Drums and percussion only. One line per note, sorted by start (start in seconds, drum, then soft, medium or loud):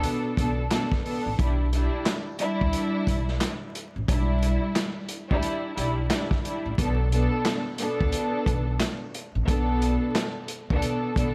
0.03 closed hi-hat medium
0.37 kick loud
0.37 closed hi-hat medium
0.71 snare loud
0.71 clap medium
0.71 closed hi-hat medium
0.92 kick medium
0.92 snare soft
1.06 open hi-hat medium
1.39 kick loud
1.39 closed hi-hat loud
1.73 closed hi-hat medium
2.06 snare loud
2.06 clap medium
2.06 closed hi-hat medium
2.39 closed hi-hat medium
2.61 kick medium
2.73 closed hi-hat medium
3.07 kick loud
3.07 closed hi-hat medium
3.28 snare soft
3.40 snare loud
3.40 clap medium
3.40 closed hi-hat medium
3.75 closed hi-hat medium
4.08 kick loud
4.08 closed hi-hat loud
4.43 closed hi-hat medium
4.76 snare loud
4.76 clap medium
4.76 closed hi-hat medium
5.09 closed hi-hat medium
5.31 kick medium
5.43 closed hi-hat medium
5.78 closed hi-hat medium
6.10 snare loud
6.10 clap medium
6.10 closed hi-hat loud
6.31 kick medium
6.31 snare soft
6.45 closed hi-hat medium
6.78 kick loud
6.78 closed hi-hat loud
7.12 closed hi-hat medium
7.45 snare loud
7.45 clap medium
7.45 closed hi-hat medium
7.78 closed hi-hat medium
8.01 kick medium
8.12 closed hi-hat medium
8.46 kick loud
8.46 closed hi-hat medium
8.80 snare loud
8.80 clap medium
8.80 closed hi-hat loud
9.14 closed hi-hat medium
9.48 kick loud
9.48 closed hi-hat loud
9.82 closed hi-hat medium
10.15 snare loud
10.15 clap medium
10.15 closed hi-hat medium
10.48 closed hi-hat medium
10.70 kick medium
10.82 closed hi-hat medium
11.16 kick loud
11.16 closed hi-hat medium